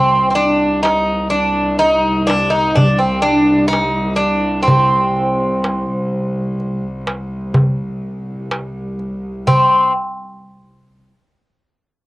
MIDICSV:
0, 0, Header, 1, 4, 480
1, 0, Start_track
1, 0, Tempo, 958466
1, 2341, Time_signature, 10, 3, 24, 8
1, 6043, End_track
2, 0, Start_track
2, 0, Title_t, "Bouzouki"
2, 0, Program_c, 0, 25
2, 0, Note_on_c, 0, 60, 90
2, 146, Note_off_c, 0, 60, 0
2, 152, Note_on_c, 0, 60, 58
2, 175, Note_off_c, 0, 60, 0
2, 177, Note_on_c, 0, 62, 89
2, 414, Note_off_c, 0, 62, 0
2, 416, Note_on_c, 0, 63, 75
2, 649, Note_off_c, 0, 63, 0
2, 651, Note_on_c, 0, 62, 85
2, 893, Note_off_c, 0, 62, 0
2, 895, Note_on_c, 0, 63, 90
2, 1136, Note_on_c, 0, 62, 85
2, 1146, Note_off_c, 0, 63, 0
2, 1252, Note_on_c, 0, 63, 86
2, 1262, Note_off_c, 0, 62, 0
2, 1379, Note_on_c, 0, 62, 75
2, 1381, Note_off_c, 0, 63, 0
2, 1492, Note_off_c, 0, 62, 0
2, 1494, Note_on_c, 0, 60, 69
2, 1610, Note_off_c, 0, 60, 0
2, 1612, Note_on_c, 0, 62, 87
2, 1840, Note_off_c, 0, 62, 0
2, 1842, Note_on_c, 0, 63, 92
2, 2082, Note_off_c, 0, 63, 0
2, 2084, Note_on_c, 0, 62, 84
2, 2315, Note_off_c, 0, 62, 0
2, 2317, Note_on_c, 0, 60, 74
2, 4229, Note_off_c, 0, 60, 0
2, 4745, Note_on_c, 0, 60, 76
2, 4967, Note_off_c, 0, 60, 0
2, 6043, End_track
3, 0, Start_track
3, 0, Title_t, "Cello section"
3, 0, Program_c, 1, 48
3, 0, Note_on_c, 1, 36, 68
3, 4791, Note_off_c, 1, 36, 0
3, 6043, End_track
4, 0, Start_track
4, 0, Title_t, "Darbuka"
4, 74, Note_on_c, 9, 62, 25
4, 124, Note_off_c, 9, 62, 0
4, 427, Note_on_c, 9, 63, 66
4, 477, Note_off_c, 9, 63, 0
4, 667, Note_on_c, 9, 62, 25
4, 717, Note_off_c, 9, 62, 0
4, 1150, Note_on_c, 9, 63, 66
4, 1200, Note_off_c, 9, 63, 0
4, 1387, Note_on_c, 9, 64, 81
4, 1438, Note_off_c, 9, 64, 0
4, 1867, Note_on_c, 9, 63, 65
4, 1917, Note_off_c, 9, 63, 0
4, 2104, Note_on_c, 9, 62, 24
4, 2155, Note_off_c, 9, 62, 0
4, 2343, Note_on_c, 9, 64, 82
4, 2393, Note_off_c, 9, 64, 0
4, 2472, Note_on_c, 9, 62, 26
4, 2522, Note_off_c, 9, 62, 0
4, 2585, Note_on_c, 9, 62, 24
4, 2635, Note_off_c, 9, 62, 0
4, 2826, Note_on_c, 9, 63, 60
4, 2876, Note_off_c, 9, 63, 0
4, 3304, Note_on_c, 9, 62, 23
4, 3354, Note_off_c, 9, 62, 0
4, 3541, Note_on_c, 9, 63, 66
4, 3591, Note_off_c, 9, 63, 0
4, 3777, Note_on_c, 9, 64, 86
4, 3828, Note_off_c, 9, 64, 0
4, 4263, Note_on_c, 9, 63, 65
4, 4314, Note_off_c, 9, 63, 0
4, 4504, Note_on_c, 9, 62, 21
4, 4554, Note_off_c, 9, 62, 0
4, 4747, Note_on_c, 9, 64, 66
4, 4797, Note_off_c, 9, 64, 0
4, 6043, End_track
0, 0, End_of_file